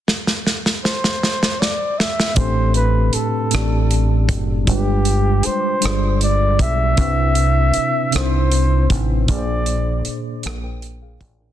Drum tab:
HH |------------|x-x-x-x-x-x-|x-x-x-x-x-x-|x-x-x-x-x-x-|
SD |ooooooooo-oo|------r-----|------r-----|------r-----|
BD |------------|o---------o-|o---------o-|o---------o-|

HH |x-x-x-x-x-x-|
SD |------r-----|
BD |o---------o-|